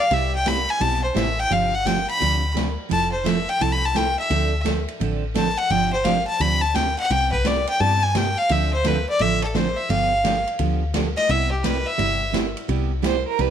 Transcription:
0.00 F5
0.10 C2 C3 G3 B3 E4 G4 E5, kick, ride
0.35 G5
0.46 C3 G3 B3 E4 G4 B5, kick, snare, hi-hat pedal, ride
0.69 G#5, ride
0.80 B1 C3 G3 B3 E4 G4 A5, kick, ride
1.04 C5
1.14 A1 C3 G3 B3 E4 G4 E5, kick, snare, hi-hat pedal, ride
1.39 G5
1.50 G1 C3 F3 C4 D4 G4 F5, kick, ride
1.74 F#5
1.85 C3 F3 C4 D4 G4 G5, kick, snare, hi-hat pedal, ride
2.09 B5, ride
2.19 D2 C3 F3 C4 D4 G4, kick, ride
2.54 C3 F3 C4 D4 G4, kick, snare, hi-hat pedal, ride
2.89 F1 F3 C4 E4 A4 A5, kick, ride
3.12 C5
3.24 F3 C4 E4 A4 E5, kick, snare, hi-hat pedal, ride
3.49 G5, ride
3.60 C2 F3 C4 E4 A4 A5, kick, ride
3.72 B5
3.85 A5
3.94 F3 C4 E4 A4 G5, kick, snare, hi-hat pedal, ride
4.19 E5
4.30 D2 D3 F3 C4 D4 A4, kick, ride
4.64 D3 F3 C4 D4 A4, kick, snare, hi-hat pedal, ride
4.88 ride
5.00 A1 D3 F3 C4 D4 A4, kick, ride
5.34 D3 F3 C4 D4 A4 A5, kick, snare, hi-hat pedal, ride
5.58 F#5, ride
5.70 G1 C3 F3 C4 D4 G4 G5, kick, ride
5.93 C5
6.04 C3 F3 C4 D4 G4 F5, kick, snare, hi-hat pedal, ride
6.27 A5
6.40 D2 C3 F3 C4 D4 G4 B5, kick, ride
6.61 A5
6.74 C3 F3 C4 D4 G4 G5, kick, snare, hi-hat pedal, ride
6.98 F#5, ride
7.10 C2 C3 G3 B3 E4 G4 G5, kick, ride
7.32 B4, kick
7.44 C3 G3 B3 E4 G4 D5, kick, snare, hi-hat pedal, ride
7.67 G5, ride
7.80 G2 C3 G3 B3 E4 G4 A5, kick
8.03 G#5
8.14 C3 G3 B3 E4 G4 G5, kick, snare, hi-hat pedal, ride
8.38 F5
8.49 D2 D3 F3 C4 D4 A4 E5, kick, ride
8.73 C5
8.84 D3 F3 C4 D4 A4 B4, kick, snare, hi-hat pedal, ride
9.09 D5
9.19 A1 D3 F3 C4 D4 A4 E5, kick, ride
9.42 A4, ride
9.54 D3 F3 C4 D4 A4 C5, kick, snare, hi-hat pedal
9.76 E5
9.89 G1 D3 F3 B3 D4 G4 F5, kick, ride
10.24 D3 F3 B3 D4 G4, kick, snare, hi-hat pedal, ride
10.47 ride
10.59 D2 D3 F3 B3 D4 G4, kick, ride
10.94 D3 F3 B3 D4 G4, kick, snare, hi-hat pedal, ride
11.17 D#5, snare, ride
11.29 C2 C3 G3 B3 E4 G4 E5, kick, ride
11.51 G4
11.63 C3 G3 B3 E4 G4 B4, kick, snare, hi-hat pedal, ride
11.86 E5
11.98 G1 C3 G3 B3 E4 G4, kick, ride
12.32 C3 G3 B3 E4 G4, kick, snare, hi-hat pedal, ride
12.57 ride
12.68 C2 C3 G3 B3 E4 G4, kick, ride
13.02 C3 G3 B3 E4 G4 C5, kick, snare, hi-hat pedal, ride
13.28 A#4
13.39 C2 C3 G3 B3 E4 G4 B4, kick, ride

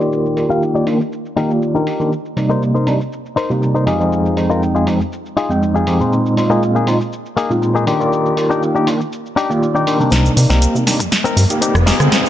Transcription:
Already playing: D#4 G4 D5
0.00 D#3 A#3 F4 G4 D5, shaker
0.13 shaker
0.26 shaker
0.36 D#3 A#3 F4 G4 D5, open hi-hat, shaker
0.49 D#4 G4 F5, shaker
0.63 shaker
0.74 D#4 G4 D5, shaker
0.86 D#3 A#3 D4 F4 G4, open hi-hat, shaker
1.00 muted clean electric guitar stroke, shaker
1.13 shaker
1.26 shaker
1.36 D#3 A#3 D#4 F4 G4 A#4 D5, open hi-hat, shaker
1.50 shaker
1.62 muted clean electric guitar stroke, shaker
1.75 D#3 A#3 D4 D#4 F4 G4 A#4, shaker
1.87 open hi-hat, shaker
1.99 D#3 A#3 D4 F4 G4, shaker
2.12 shaker
2.26 shaker
2.36 C3 G3 A#3 D#4 D5, open hi-hat, shaker
2.50 D#4 A#4 C5, shaker
2.62 shaker
2.74 D#4 A#4 C5, shaker
2.86 C3 G3 A#3 D4 D#4, open hi-hat, shaker
2.99 muted clean electric guitar stroke, shaker
3.13 shaker
3.26 shaker
3.36 D#4 A#4 C5, open hi-hat, shaker
3.49 C3 G3 A#3 D#4 D5, shaker
3.61 muted clean electric guitar stroke, shaker
3.75 D#4 A#4 C5, shaker
3.86 F2 G#3 C4 D#4 F4 G4 G#4, open hi-hat, shaker
3.99 F2 G#3 C4 D#4 G5, shaker
4.13 shaker
4.26 shaker
4.37 F2 G#3 C4 D#4 G5, open hi-hat, shaker
4.50 D#4 F4 A#4, shaker
4.63 shaker
4.75 D#4 F4 G#4, shaker
4.86 F2 G#3 C4 D#4 G4, open hi-hat, shaker
5.00 muted clean electric guitar stroke, shaker
5.13 shaker
5.26 shaker
5.37 D#4 F4 G#4, open hi-hat, shaker
5.50 F2 G#3 C4 D#4 G5, shaker
5.62 muted clean electric guitar stroke, shaker
5.75 D#4 F4 G#4, shaker
5.87 F2 G#3 C4 D#4 G4, open hi-hat, shaker
6.00 A#2 G#3 C4 D#4 F4, shaker
6.13 shaker
6.26 shaker
6.37 A#2 G#3 C4 D#4 F4, open hi-hat, shaker
6.50 A#3 D#4 G#4, shaker
6.63 shaker
6.75 A#3 D#4 G#4, shaker
6.87 A#2 G#3 C4 D#4 F4, open hi-hat, shaker
7.00 muted clean electric guitar stroke, shaker
7.13 shaker
7.26 shaker
7.37 A#3 D#4 G#4, open hi-hat, shaker
7.50 A#2 G#3 C4 D#4 F4, shaker
7.62 muted clean electric guitar stroke, shaker
7.75 A#3 D#4 G#4, shaker
7.86 D#3 A#3 D4 D#4 F4 G4, open hi-hat, shaker
8.00 D#3 A#3 F4 G4 D5, shaker
8.13 shaker
8.26 shaker
8.36 D#3 A#3 F4 G4 D5, open hi-hat, shaker
8.50 D4 D#4 G4, shaker
8.63 shaker
8.75 D4 D#4 G4, shaker
8.87 D#3 A#3 D4 F4 G4, open hi-hat, shaker
9.00 muted clean electric guitar stroke, shaker
9.13 shaker
9.26 shaker
9.36 D4 D#4 G4, open hi-hat, shaker
9.50 D#3 A#3 F4 G4 D5, shaker
9.61 muted clean electric guitar stroke, shaker
9.75 D4 D#4 G4, shaker
9.86 D#3 A#3 D4 F4 G4, open hi-hat, shaker
9.99 C3 G3 A#3 D4 D#4, shaker
10.11 C2 C4 D#4 A#4, snare, closed hi-hat, riser, shaker
10.26 shaker
10.36 C3 A#3 D#4 G4 D5, open hi-hat, shaker
10.50 C2 C4 D#4 A#4, snare, closed hi-hat, shaker
10.62 closed hi-hat, shaker
10.75 C3, shaker
10.86 A#3 D4 D#4 G4, snare, open hi-hat, shaker
10.99 F2, muted clean electric guitar stroke, closed hi-hat, shaker
11.11 muted clean electric guitar stroke, snare, closed hi-hat, shaker
11.24 C4 D#4 A#4, closed hi-hat, shaker
11.37 G2, open hi-hat, tambourine, shaker
11.50 A#3 D#4 G4 D5, closed hi-hat, tambourine, shaker
11.61 C4 D#4 G4, closed hi-hat, shaker
11.75 F1, cross-stick, shaker
11.86 G#3 C4 D#4 F4 G4 G#4, snare, open hi-hat, shaker
11.99 D3 G#3 C4 D#4 G5, cross-stick, closed hi-hat, shaker
12.12 snare, closed hi-hat, shaker
12.26 shaker

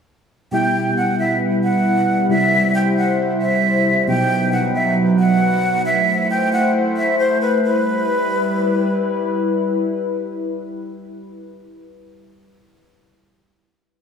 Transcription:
0.51 B2 G3 E4 B4 G5
0.97 F#5
1.19 E5
1.64 F#5
2.29 C3 G3 E4 C5 E5
2.75 G5
2.97 F#5
3.41 E5
4.07 B2 F#3 D#4 B4 G5
4.52 F#5
4.75 E5
5.19 F#5
5.86 A3 E4 C5 E5
6.30 G5
6.53 F#5
6.97 E5
7.19 C5
7.41 B4
7.64 G3 E4 B4

